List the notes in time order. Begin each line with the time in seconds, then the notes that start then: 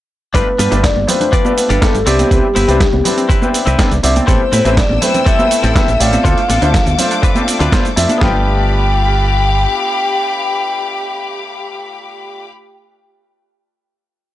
0.34 G1 F3 A3 D4 F4 G4 B4, kick, closed hi-hat, shaker
0.47 G3
0.58 G2 B3 D4 F4 G4 B4, open hi-hat, high conga, shaker
0.71 G1 A3 D4 F4 G4 B4, closed hi-hat, shaker
0.84 F3 D5, kick, snare, closed hi-hat, shaker
0.96 G1 G3, high conga
1.07 A3 B3 D4 F4 G4 B4 C5, muted clean electric guitar stroke, open hi-hat, low conga, shaker
1.21 D4, closed hi-hat, low conga, shaker
1.32 F3 D4 F4 G4 B4 D5, kick, closed hi-hat, shaker
1.45 G3 A3 D4 F4 G4 B4, high conga, shaker
1.57 B3, open hi-hat, shaker
1.69 G1 D4 F4 G4 A4, closed hi-hat, shaker
1.81 F3 A3 D4 F4 G4 A4 B4, kick, snare, closed hi-hat, high conga, shaker
1.94 G1 G3, closed hi-hat, shaker
2.06 C2 B3 C4 D4 E4 G4 B4 D5, open hi-hat, shaker
2.19 C4, closed hi-hat, high conga, shaker
2.31 C2 E3 C4 D4 E4 G4 B4, kick, closed hi-hat, shaker
2.44 G3
2.55 G1 B3 C4 E4 G4 B4, open hi-hat, high conga, shaker
2.68 C2 C4 D4 E4 G4 B4, closed hi-hat, shaker
2.80 E3, kick, snare, closed hi-hat, shaker
2.93 C2 G3, high conga
3.04 B3 C4 D4 E4 G4 B4, muted clean electric guitar stroke, open hi-hat, low conga, shaker
3.17 C4, closed hi-hat, shaker
3.29 E3 C4 E4 G4 B4, kick, closed hi-hat, shaker
3.42 G3 C4 D4 E4 G4 B4, high conga, shaker
3.54 B3, open hi-hat, shaker
3.66 C2 C4 E4 G4 B4, closed hi-hat, shaker
3.78 E3 C4 D4 E4 G4 B4, kick, snare, closed hi-hat, high conga, shaker
3.91 C2 G3, closed hi-hat, shaker
4.03 C2 B3 C4 D4 E4 G4 D5 E5, open hi-hat, shaker
4.15 C4, muted clean electric guitar stroke, closed hi-hat, high conga, shaker
4.27 A1 E3 A3 C4 E4 G4 A4 B4 C5 G5 E6, kick, closed hi-hat, shaker
4.41 G3
4.52 A2 A3 C4 E4 G4 B4, open hi-hat, high conga, shaker
4.65 A1 A3 C4 E4 G4 B4, closed hi-hat, shaker
4.77 E3 D5, kick, snare, closed hi-hat, shaker
4.89 A1 G3, high conga
5.01 A3 C4 E4 G4 B4 C5, muted clean electric guitar stroke, open hi-hat, low conga, shaker
5.14 C4, closed hi-hat, low conga, shaker
5.25 E3 C4 E4 G4 A4 E5, kick, closed hi-hat, shaker
5.39 G3 A3 C4 E4 G4 B4, high conga, shaker
5.51 A3, open hi-hat, shaker
5.63 A1 C4 E4 G4 A4, closed hi-hat, shaker
5.75 E3 A3 C4 E4 G4 B4 E5, kick, snare, closed hi-hat, high conga, shaker
5.88 A1 G3, closed hi-hat, shaker
6.00 A1 A3 C4 E4 G4 D5 F5, open hi-hat, shaker
6.12 C4, muted clean electric guitar stroke, closed hi-hat, high conga, shaker
6.24 D2 F3 A3 C4 D4 E4 F4 A4 C5 D6, kick, closed hi-hat, shaker
6.38 A3, closed hi-hat
6.48 A1 C4 D4 F4 A4, open hi-hat, high conga, shaker
6.62 D2 A3 D4 E4 F4 C5, closed hi-hat, shaker
6.74 F3, kick, snare, closed hi-hat, shaker
6.86 D2 A3, closed hi-hat, high conga, shaker
6.98 A3 C4 D4 F4 C5 F5, muted clean electric guitar stroke, open hi-hat, low conga, shaker
7.11 D4, closed hi-hat, shaker
7.22 F3 C4 D4 F4 B4, kick, closed hi-hat, shaker
7.35 A3 C4 D4 F4 E5, closed hi-hat, high conga, shaker
7.48 C4, open hi-hat, shaker
7.59 D2 C4 D4 F4 B4, closed hi-hat, shaker
7.72 F3 A3 D4 E4 F4 C5, kick, snare, closed hi-hat, high conga, shaker
7.85 A3, closed hi-hat, shaker
7.96 F2 A3 C4 D4 E4 F4 E5, open hi-hat, shaker
8.09 D4, muted clean electric guitar stroke, closed hi-hat, high conga, shaker
8.18 G1 F3 A3 B3 D4 F4 G4 F5 G5 B5 D6, kick, snare
8.22 G4 B4